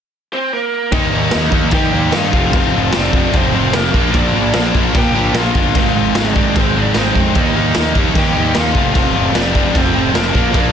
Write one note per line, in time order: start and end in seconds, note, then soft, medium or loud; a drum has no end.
0.33 0.52 C4 medium
0.33 0.51 C5 medium
0.53 0.90 A#3 medium
0.53 0.94 A#4 medium
0.92 1.08 D#2 loud
0.92 1.12 D#3 medium
0.92 1.13 G3 medium
0.92 1.13 A#3 medium
0.92 1.49 D#4 medium
0.92 1.13 D#4 loud
0.92 1.49 D#5 loud
0.92 kick loud
0.92 crash medium
1.13 1.29 D#2 medium
1.13 1.31 D#3 medium
1.13 1.32 G3 medium
1.13 1.33 A#3 medium
1.13 1.33 D#4 loud
1.31 1.50 D#2 medium
1.31 1.51 D#3 medium
1.31 1.52 G3 medium
1.31 1.52 A#3 loud
1.31 1.53 D#4 medium
1.31 snare loud
1.31 crash medium
1.52 1.68 D#2 loud
1.52 1.72 D#3 medium
1.52 1.72 G3 medium
1.52 1.73 A#3 medium
1.52 1.73 D#4 medium
1.52 kick medium
1.71 1.88 D#3 medium
1.71 1.92 D#3 loud
1.71 1.93 G3 loud
1.71 1.94 A#3 loud
1.71 1.94 D#4 loud
1.71 2.11 G4 medium
1.71 2.15 G5 medium
1.71 kick loud
1.71 crash medium
1.91 2.09 D#2 medium
1.91 2.11 D#3 medium
1.91 2.13 G3 medium
1.91 2.10 A#3 medium
1.95 2.13 A#3 loud
1.95 2.13 D#4 loud
2.12 2.30 G2 medium
2.12 2.32 D#3 medium
2.12 2.32 G3 medium
2.12 2.33 A#3 medium
2.12 2.33 D#4 loud
2.12 2.52 F4 medium
2.12 2.55 F5 loud
2.12 snare loud
2.12 crash medium
2.33 2.49 F1 loud
2.33 2.53 F2 medium
2.33 2.53 C3 medium
2.33 2.55 F3 loud
2.33 2.54 A3 medium
2.33 2.55 C4 loud
2.33 kick medium
2.53 2.69 F1 loud
2.53 2.74 F2 medium
2.53 2.74 C3 loud
2.53 2.76 F3 loud
2.53 2.75 A3 loud
2.53 2.76 C4 loud
2.53 2.92 F4 medium
2.53 2.92 F5 loud
2.53 kick loud
2.53 crash medium
2.70 2.91 F2 medium
2.75 2.91 F1 medium
2.75 2.93 F2 medium
2.75 2.93 C3 medium
2.75 2.95 F3 medium
2.75 2.94 A3 medium
2.75 2.95 C4 medium
2.93 3.27 F1 medium
2.93 3.13 F2 medium
2.93 3.13 C3 medium
2.93 3.14 F3 medium
2.93 3.14 A3 loud
2.93 3.14 C4 loud
2.93 3.32 D4 medium
2.93 3.36 D5 loud
2.93 snare loud
2.93 crash medium
3.13 3.32 F2 medium
3.13 3.33 C3 medium
3.13 3.34 F3 loud
3.13 3.34 A3 loud
3.13 3.34 C4 medium
3.13 kick loud
3.33 3.49 F1 loud
3.33 3.53 F2 medium
3.33 3.54 C3 loud
3.33 3.54 F3 loud
3.33 3.55 A3 loud
3.33 3.55 C4 loud
3.33 3.53 C4 medium
3.33 3.54 C5 loud
3.33 kick loud
3.33 crash medium
3.54 3.71 F1 medium
3.54 3.72 F2 medium
3.54 3.72 C3 medium
3.54 3.72 F3 loud
3.54 3.73 A3 medium
3.54 3.73 C4 medium
3.54 3.74 C4 loud
3.54 3.75 C5 medium
3.73 3.90 F1 medium
3.73 3.92 F2 medium
3.73 3.92 C3 medium
3.73 3.93 F3 medium
3.73 3.93 A3 loud
3.73 4.11 A#3 medium
3.73 3.93 C4 medium
3.73 4.15 A#4 medium
3.73 snare loud
3.73 crash medium
3.94 4.10 A#1 loud
3.94 4.13 A#2 medium
3.94 4.13 F3 medium
3.94 4.14 A#3 loud
3.94 4.13 D4 loud
3.94 kick medium
4.14 4.30 A#1 medium
4.14 4.34 A#2 medium
4.14 4.34 F3 medium
4.14 4.34 A#3 loud
4.14 4.35 D4 loud
4.14 4.71 D4 medium
4.14 4.71 D5 medium
4.14 kick loud
4.14 crash medium
4.35 4.50 A#1 medium
4.35 4.54 A#2 medium
4.35 4.54 F3 medium
4.35 4.54 A#3 medium
4.35 4.55 D4 loud
4.54 4.70 A#1 loud
4.54 4.73 A#2 medium
4.54 4.73 F3 medium
4.54 4.74 A#3 medium
4.54 4.74 D4 loud
4.54 snare loud
4.54 crash medium
4.74 4.90 A#1 loud
4.74 4.93 A#2 medium
4.74 4.93 F3 medium
4.74 4.94 A#3 loud
4.74 4.94 D4 medium
4.74 kick medium
4.94 5.13 A#2 loud
4.94 5.10 A#2 loud
4.94 5.13 F3 loud
4.94 5.14 A#3 medium
4.94 5.15 D4 loud
4.94 5.33 G4 medium
4.94 5.33 G5 loud
4.94 kick loud
4.94 crash medium
5.14 5.31 A#1 medium
5.14 5.33 A#2 medium
5.14 5.34 F3 loud
5.14 5.34 A#3 medium
5.14 5.34 D4 loud
5.34 5.50 A#1 medium
5.34 5.54 A#2 medium
5.34 5.55 F3 medium
5.34 5.56 A#3 medium
5.34 5.56 D4 loud
5.34 snare loud
5.34 crash medium
5.38 5.74 F4 medium
5.38 5.77 F5 loud
5.55 5.70 G1 medium
5.55 5.74 A#2 medium
5.55 5.74 F3 medium
5.55 5.75 A#3 medium
5.55 5.75 D4 loud
5.55 kick medium
5.75 5.90 G#1 loud
5.75 5.94 G#2 medium
5.75 5.94 D#3 medium
5.75 5.94 G#3 loud
5.75 5.95 C4 loud
5.75 5.96 D#4 loud
5.75 6.14 F4 medium
5.75 kick loud
5.75 crash medium
5.79 6.18 F5 medium
5.95 6.11 G#1 medium
5.95 6.13 G#2 medium
5.95 6.13 D#3 medium
5.95 6.14 G#3 medium
5.95 6.14 C4 medium
5.95 6.15 D#4 medium
6.14 6.46 G#1 medium
6.14 6.34 G#2 medium
6.14 6.35 D#3 loud
6.14 6.35 G#3 medium
6.14 6.36 C4 medium
6.14 6.36 D#4 medium
6.14 snare loud
6.14 crash medium
6.18 6.54 D4 medium
6.18 6.54 D5 medium
6.35 6.54 G#2 medium
6.35 6.55 D#3 medium
6.35 6.56 G#3 medium
6.35 6.56 C4 medium
6.35 6.56 D#4 medium
6.35 kick medium
6.56 6.71 G#1 medium
6.56 6.75 G#2 loud
6.56 6.76 D#3 loud
6.56 6.76 G#3 loud
6.56 6.76 C4 loud
6.56 6.75 C4 medium
6.56 6.76 D#4 loud
6.56 6.75 C5 medium
6.56 kick loud
6.56 crash medium
6.75 6.91 G#1 medium
6.75 6.95 G#2 medium
6.75 6.96 D#3 medium
6.75 6.96 G#3 loud
6.75 6.97 C4 loud
6.75 6.83 D4 medium
6.75 6.96 D#4 medium
6.79 6.84 D5 medium
6.94 7.10 G#1 medium
6.94 7.15 G#2 medium
6.94 7.16 D#3 medium
6.94 7.15 G#3 medium
6.94 7.34 C4 medium
6.94 7.15 C4 medium
6.94 7.16 D#4 medium
6.94 7.38 C5 medium
6.94 snare loud
6.94 crash medium
7.15 7.31 F2 medium
7.15 7.34 G#2 medium
7.15 7.35 D#3 medium
7.15 7.35 G#3 medium
7.15 7.35 C4 medium
7.15 7.35 D#4 medium
7.15 kick medium
7.35 7.51 D#2 loud
7.35 7.54 D#3 medium
7.35 7.55 G3 loud
7.35 7.56 A#3 medium
7.35 7.56 D#4 medium
7.35 7.93 D#4 medium
7.35 kick loud
7.35 crash medium
7.39 7.93 D#5 medium
7.55 7.71 D#2 medium
7.55 7.75 D#3 medium
7.55 7.75 G3 medium
7.55 7.76 A#3 loud
7.55 7.76 D#4 medium
7.75 7.92 D#2 medium
7.75 7.94 D#3 medium
7.75 7.96 G3 loud
7.75 7.96 A#3 medium
7.75 7.96 D#4 medium
7.75 snare loud
7.75 crash medium
7.95 8.11 D#2 loud
7.95 8.14 D#3 medium
7.95 8.16 G3 medium
7.95 8.15 A#3 medium
7.95 8.16 D#4 medium
7.95 kick medium
8.15 8.31 D#3 loud
8.15 8.35 D#3 loud
8.15 8.36 G3 loud
8.15 8.36 A#3 loud
8.15 8.36 D#4 loud
8.15 8.54 G4 medium
8.15 8.54 G5 loud
8.15 kick loud
8.15 crash medium
8.36 8.52 D#2 medium
8.36 8.54 D#3 loud
8.36 8.54 G3 medium
8.36 8.54 A#3 loud
8.36 8.55 D#4 loud
8.55 8.72 D#2 medium
8.55 8.74 D#3 medium
8.55 8.74 G3 medium
8.55 8.74 A#3 medium
8.55 8.75 D#4 medium
8.55 8.94 F4 medium
8.55 snare loud
8.55 crash medium
8.59 8.96 F5 medium
8.75 8.91 F1 medium
8.75 8.93 F2 loud
8.75 8.93 C3 medium
8.75 8.95 F3 medium
8.75 8.94 A3 medium
8.75 8.94 C4 loud
8.75 kick medium
8.94 9.11 F1 loud
8.94 9.12 F2 medium
8.94 9.13 C3 medium
8.94 9.14 F3 medium
8.94 9.14 A3 loud
8.94 9.15 C4 loud
8.94 9.33 F4 medium
8.94 9.33 F5 loud
8.94 kick loud
8.94 crash medium
9.13 9.33 F2 medium
9.13 9.34 C3 medium
9.13 9.35 F3 loud
9.13 9.35 A3 loud
9.13 9.35 C4 loud
9.17 9.32 F1 medium
9.31 9.50 F2 medium
9.31 9.51 C3 medium
9.35 9.66 F1 medium
9.35 9.54 F2 medium
9.35 9.54 C3 medium
9.35 9.55 F3 medium
9.35 9.54 A3 medium
9.35 9.55 C4 loud
9.35 9.73 D4 medium
9.35 9.77 D5 medium
9.35 snare loud
9.35 crash medium
9.55 9.73 F2 medium
9.55 9.73 C3 medium
9.55 9.74 F3 medium
9.55 9.74 A3 medium
9.55 9.75 C4 loud
9.55 kick medium
9.74 9.90 F1 medium
9.74 9.93 F2 loud
9.74 9.94 C3 loud
9.74 9.94 F3 loud
9.74 9.94 A3 loud
9.74 9.93 C4 medium
9.74 9.94 C4 loud
9.74 9.94 C5 medium
9.74 kick loud
9.74 crash medium
9.94 10.11 F1 medium
9.94 10.14 F2 medium
9.94 10.14 C3 medium
9.94 10.14 F3 medium
9.94 10.15 A3 loud
9.94 10.13 C4 medium
9.94 10.16 C4 loud
9.94 10.15 C5 medium
10.15 10.30 F1 medium
10.15 10.33 F2 medium
10.15 10.33 C3 medium
10.15 10.34 F3 medium
10.15 10.34 A3 medium
10.15 10.52 A#3 medium
10.15 10.34 C4 loud
10.15 10.56 A#4 medium
10.15 snare loud
10.15 crash medium
10.34 10.50 A#1 loud
10.34 10.52 A#2 medium
10.34 10.53 F3 medium
10.34 10.54 A#3 medium
10.34 10.54 D4 loud
10.34 kick medium
10.54 10.70 A#1 loud
10.54 10.72 A#2 medium
10.54 10.72 F3 loud
10.54 10.72 A#3 loud
10.54 10.72 D4 medium
10.54 10.72 D4 loud
10.54 10.72 D5 loud
10.54 kick loud
10.54 crash medium